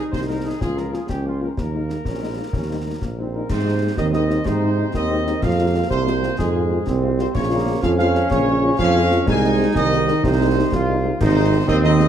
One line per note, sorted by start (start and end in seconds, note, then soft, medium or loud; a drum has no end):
0.00 0.57 D#4 medium
0.12 0.53 C2 medium
0.12 0.19 C5 loud
0.12 concert bass drum medium
0.12 snare medium
0.28 0.35 G#3 medium
0.28 0.35 D#4 medium
0.28 0.43 A#4 medium
0.44 0.51 G#3 soft
0.44 0.51 D#4 soft
0.44 0.60 G#4 medium
0.61 1.01 C#2 medium
0.61 1.06 F4 medium
0.61 0.76 G#4 medium
0.61 concert bass drum medium
0.61 snare medium
0.76 0.83 F3 soft
0.76 0.82 A#3 soft
0.76 0.82 F4 soft
0.76 0.93 A#4 medium
0.76 snare soft
0.93 0.99 F3 soft
0.93 0.99 A#3 soft
0.93 0.99 F4 soft
0.93 1.10 G#4 medium
0.93 snare medium
1.09 1.49 C#2 medium
1.09 1.58 C#4 medium
1.09 1.24 G4 medium
1.09 concert bass drum medium
1.09 snare medium
1.25 1.31 F3 medium
1.25 1.31 A#3 soft
1.25 1.31 F4 soft
1.25 1.41 F4 medium
1.41 1.47 F3 soft
1.41 1.47 A#3 soft
1.41 1.47 F4 soft
1.41 1.50 A#4 medium
1.57 1.98 D#2 medium
1.57 2.00 A#3 medium
1.57 3.16 A#4 medium
1.57 concert bass drum medium
1.57 snare medium
1.74 1.79 G#3 soft
1.74 1.80 A#3 soft
1.74 1.79 D#4 soft
1.89 1.95 G#3 soft
1.89 1.95 A#3 soft
1.89 1.95 D#4 soft
1.89 snare medium
2.05 2.41 A#1 medium
2.05 2.21 C#4 medium
2.05 concert bass drum medium
2.05 snare medium
2.21 2.27 G#3 soft
2.21 2.27 A#3 soft
2.21 2.38 C4 medium
2.21 2.27 D#4 soft
2.37 2.43 G#3 soft
2.37 2.44 A#3 medium
2.37 2.43 A#3 soft
2.37 2.43 D#4 soft
2.53 2.93 D#2 medium
2.53 2.68 C#4 medium
2.53 concert bass drum medium
2.53 snare medium
2.69 2.76 G3 soft
2.69 2.75 A#3 soft
2.69 2.86 C4 medium
2.69 2.75 D#4 soft
2.85 2.91 G3 soft
2.85 2.93 A#3 medium
2.85 2.92 A#3 soft
2.85 2.91 D#4 soft
3.02 3.42 A#1 medium
3.02 3.10 A#3 medium
3.02 concert bass drum medium
3.02 snare medium
3.18 3.24 G3 soft
3.18 3.25 A#3 soft
3.18 3.48 C4 medium
3.18 3.24 D#4 soft
3.33 3.49 A#2 medium
3.33 3.40 G3 soft
3.33 3.40 A#3 soft
3.33 3.40 D#4 soft
3.33 3.48 A#4 medium
3.49 3.90 G#2 medium
3.49 3.95 C3 medium
3.49 3.95 C5 medium
3.49 concert bass drum medium
3.49 snare medium
3.49 crash soft
3.66 3.72 G#3 medium
3.66 3.72 C4 medium
3.66 3.72 D#4 medium
3.82 3.88 G#3 medium
3.82 3.88 C4 medium
3.82 3.88 D#4 medium
3.97 4.38 D#2 medium
3.97 4.13 D#3 loud
3.97 4.42 C4 medium
3.97 4.05 D#5 loud
3.97 concert bass drum medium
3.97 snare medium
4.13 4.44 D#3 medium
4.13 4.20 G#3 medium
4.13 4.20 C4 medium
4.13 4.20 D#4 medium
4.13 4.44 D#5 medium
4.13 snare medium
4.30 4.36 G#3 medium
4.30 4.36 C4 medium
4.30 4.36 D#4 medium
4.30 snare medium
4.45 4.86 G#2 medium
4.45 4.91 C3 medium
4.45 4.91 D#4 medium
4.45 4.94 C5 loud
4.45 concert bass drum medium
4.45 snare medium
4.62 4.68 G#3 medium
4.62 4.68 C4 medium
4.62 4.68 D#4 medium
4.78 4.84 G#3 medium
4.78 4.84 C4 medium
4.78 4.84 D#4 medium
4.94 5.34 D#2 medium
4.94 5.44 D#3 loud
4.94 5.40 C4 medium
4.94 5.40 D#5 loud
4.94 concert bass drum medium
4.94 snare medium
5.10 5.16 G#3 medium
5.10 5.16 C4 medium
5.10 5.16 D#4 medium
5.26 5.32 G#3 medium
5.26 5.32 C4 medium
5.26 5.32 D#4 medium
5.26 snare medium
5.42 5.83 F2 medium
5.42 5.89 F3 loud
5.42 6.35 A#3 medium
5.42 5.90 F5 loud
5.42 concert bass drum medium
5.42 snare medium
5.42 crash soft
5.59 5.65 G#3 medium
5.59 5.64 C4 medium
5.59 5.64 F4 medium
5.74 5.80 G#3 medium
5.74 5.80 C4 medium
5.74 5.80 F4 medium
5.90 6.31 C2 loud
5.90 6.35 C3 loud
5.90 6.35 C5 loud
5.90 concert bass drum medium
5.90 snare medium
6.06 6.12 G#3 medium
6.06 6.12 C4 medium
6.06 6.12 F4 medium
6.06 snare medium
6.22 6.28 G#3 medium
6.22 6.28 C4 medium
6.22 6.28 F4 medium
6.22 snare medium
6.38 6.79 F2 loud
6.38 6.98 G#2 medium
6.38 6.84 G#3 medium
6.38 6.99 G#4 medium
6.38 concert bass drum medium
6.38 snare medium
6.56 6.61 G#3 medium
6.56 6.61 C4 medium
6.56 6.61 F4 medium
6.71 6.77 G#3 medium
6.71 6.77 C4 medium
6.71 6.77 F4 medium
6.86 7.27 C2 loud
6.86 7.31 C4 medium
6.86 concert bass drum medium
6.86 snare medium
7.02 7.08 G#3 medium
7.02 7.08 C4 medium
7.02 7.08 F4 medium
7.18 7.34 C3 medium
7.18 7.24 G#3 medium
7.18 7.24 C4 medium
7.18 7.24 F4 medium
7.18 7.26 C5 loud
7.18 snare medium
7.34 7.75 A#1 medium
7.34 7.80 C#3 medium
7.34 7.79 A#3 medium
7.34 7.79 C#5 loud
7.34 concert bass drum medium
7.34 snare medium
7.34 crash soft
7.50 7.56 G#3 medium
7.50 7.56 C#4 medium
7.50 7.56 F4 medium
7.66 7.72 G#3 medium
7.66 7.72 C#4 medium
7.66 7.72 F4 medium
7.82 8.23 F2 loud
7.82 7.98 F3 loud
7.82 8.78 C#4 loud
7.82 7.90 F5 loud
7.82 concert bass drum medium
7.82 snare medium
7.98 8.28 F3 loud
7.98 8.05 G#3 medium
7.98 8.05 C#4 medium
7.98 8.05 F4 medium
7.98 8.29 F5 loud
7.98 snare medium
8.14 8.20 G#3 medium
8.14 8.20 C#4 medium
8.14 8.20 F4 medium
8.14 snare medium
8.30 8.71 A#1 medium
8.30 8.76 C#3 medium
8.30 8.76 C#5 loud
8.30 concert bass drum medium
8.30 snare medium
8.46 8.52 G#3 medium
8.46 8.52 C#4 medium
8.46 8.52 F4 medium
8.62 8.68 G#3 medium
8.62 8.68 C#4 medium
8.62 8.68 F4 medium
8.79 9.19 F2 loud
8.79 9.28 F3 loud
8.79 9.24 C#4 loud
8.79 9.24 F5 loud
8.79 concert bass drum medium
8.79 snare medium
8.95 9.01 G#3 medium
8.95 9.01 C#4 medium
8.95 9.01 F4 medium
9.10 9.16 G#3 medium
9.10 9.16 C#4 medium
9.10 9.17 F4 medium
9.10 snare medium
9.27 9.67 C2 loud
9.27 9.76 G#3 loud
9.27 10.68 D#4 loud
9.27 9.73 G#5 loud
9.27 concert bass drum medium
9.27 snare medium
9.27 crash soft
9.43 9.49 G#3 medium
9.43 9.49 C4 medium
9.43 9.49 D#4 medium
9.60 9.65 G#3 medium
9.60 9.65 C4 medium
9.60 9.65 D#4 medium
9.75 10.11 C2 loud
9.75 10.23 D#3 loud
9.75 10.21 D#5 loud
9.75 concert bass drum medium
9.75 snare medium
9.92 9.98 G#3 medium
9.92 9.98 C4 medium
9.92 9.98 D#4 medium
9.92 snare medium
10.07 10.13 G#3 medium
10.07 10.14 C4 medium
10.07 10.13 D#4 medium
10.07 snare medium
10.24 10.64 C2 loud
10.24 10.84 C3 loud
10.24 10.88 C5 loud
10.24 concert bass drum medium
10.24 snare medium
10.40 10.46 G#3 medium
10.40 10.46 C4 medium
10.40 10.46 D#4 medium
10.56 10.62 G#3 medium
10.56 10.62 C4 medium
10.56 10.62 D#4 medium
10.72 11.12 C2 loud
10.72 11.17 F4 loud
10.72 concert bass drum medium
10.72 snare medium
10.87 10.93 G#3 medium
10.87 10.93 C4 medium
10.87 10.94 D#4 medium
11.04 11.10 G#3 medium
11.04 11.09 C4 medium
11.04 11.10 D#4 medium
11.20 11.60 G#1 loud
11.20 11.65 C3 loud
11.20 11.55 D#4 loud
11.20 11.65 C5 loud
11.20 concert bass drum loud
11.20 snare medium
11.20 crash medium
11.36 11.42 G#3 medium
11.36 11.42 C4 medium
11.36 11.42 D#4 medium
11.51 11.58 G#3 medium
11.51 11.57 C4 medium
11.51 11.57 D#4 medium
11.67 12.08 D#2 loud
11.67 11.74 D#3 loud
11.67 12.08 C4 loud
11.67 11.75 D#5 loud
11.67 concert bass drum medium
11.67 snare medium
11.83 12.08 D#3 loud
11.83 11.89 G#3 medium
11.83 11.89 C4 medium
11.83 11.90 D#4 medium
11.83 12.08 D#5 loud
11.83 snare medium
11.99 12.06 G#3 medium
11.99 12.05 C4 medium
11.99 12.05 D#4 medium
11.99 snare medium